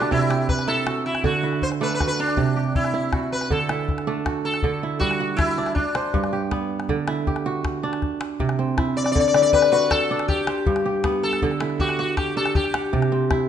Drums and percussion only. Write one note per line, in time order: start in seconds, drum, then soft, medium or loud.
0.02 calabash click soft
0.12 calabash thump medium
0.30 calabash click medium
0.49 calabash thump medium
0.59 calabash click soft
0.87 calabash click medium
1.15 calabash click medium
1.24 calabash thump medium
1.53 calabash click soft
1.62 calabash thump medium
1.72 calabash click soft
1.82 calabash click soft
1.91 calabash click soft
2.00 calabash thump medium
2.00 calabash click medium
2.28 calabash click soft
2.37 calabash thump medium
2.37 calabash click soft
2.47 calabash click soft
2.66 calabash click soft
2.75 calabash thump medium
2.84 calabash click soft
3.03 calabash click soft
3.13 calabash thump medium
3.13 calabash click medium
3.41 calabash click soft
3.50 calabash thump medium
3.59 calabash click soft
3.69 calabash click medium
3.79 calabash click soft
3.88 calabash thump medium
3.98 calabash click soft
4.26 calabash thump medium
4.26 calabash click medium
4.54 calabash click soft
4.62 calabash thump medium
5.01 calabash thump medium
5.11 calabash click soft
5.39 calabash thump medium
5.39 calabash click medium
5.66 calabash click soft
5.76 calabash thump medium
5.76 calabash click soft
5.95 calabash click medium
6.14 calabash thump medium
6.24 calabash click soft
6.51 calabash thump medium
6.51 calabash click medium
6.80 calabash click soft
6.89 calabash thump medium
7.08 calabash click medium
7.27 calabash thump medium
7.36 calabash click soft
7.65 calabash thump medium
7.65 calabash click medium
7.93 calabash click medium
8.02 calabash thump medium
8.02 calabash click soft
8.21 calabash click medium
8.40 calabash thump medium
8.49 calabash click soft
8.78 calabash thump medium
8.78 calabash click medium
9.06 calabash click soft
9.16 calabash thump medium
9.34 calabash click medium
9.53 calabash thump medium
9.62 calabash click medium
9.91 calabash thump medium
9.91 calabash click medium
10.19 calabash click medium
10.29 calabash thump medium
10.29 calabash click soft
10.47 calabash click medium
10.66 calabash thump medium
10.76 calabash click medium
11.04 calabash thump medium
11.04 calabash click medium
11.33 calabash click medium
11.42 calabash thump medium
11.51 calabash click soft
11.60 calabash click medium
11.70 calabash click soft
11.79 calabash thump medium
11.89 calabash click medium
12.17 calabash thump medium
12.17 calabash click medium
12.46 calabash click medium
12.55 calabash thump medium
12.55 calabash click soft
12.64 calabash click soft
12.74 calabash click medium
12.93 calabash thump medium
13.02 calabash click soft
13.31 calabash thump medium
13.31 calabash click medium
13.40 calabash click soft